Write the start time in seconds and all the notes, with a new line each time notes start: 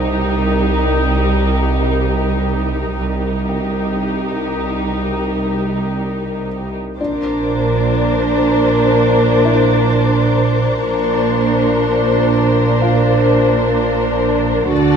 Already playing: C2 D#4 G4 A#4 C5
2.98 C2 D#4 G4 A#4
3.49 G5
6.99 A#1 A#2 D4 A#4 C5 D5 A#5 D6
7.97 C6
9.45 E4 E5
10.86 A#1 A#2 D4 A#4 C5
10.98 C#6
12.81 F4 F5
14.71 D2 D3 F#4 A4 D5 A6 A#6